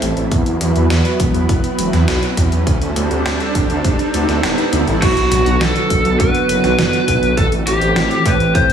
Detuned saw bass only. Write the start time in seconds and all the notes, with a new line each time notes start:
0.02 A1
0.17 A1
0.32 E2
0.46 E2
0.61 E2
0.76 E2
0.90 E2
1.20 E1
1.34 E2
1.49 E1
1.79 E1
1.93 E2
2.08 B1
2.37 E2
2.52 E2
2.67 D2
2.82 D2
2.96 D2
3.11 D2
3.26 D2
3.55 D1
3.70 D2
3.84 D1
4.14 D2
4.29 D2
4.43 D1
4.73 D2
4.87 A1
5.02 B1
5.17 B1
5.31 B1
5.46 B1
5.61 B1
5.90 F#1
6.05 B1
6.20 F#1
6.49 F#1
6.64 B1
6.79 F#1
7.08 B1
7.23 B1
7.37 A1
7.52 A1
7.67 A1
7.81 A1
7.96 A1
8.26 A2
8.40 A1
8.55 A2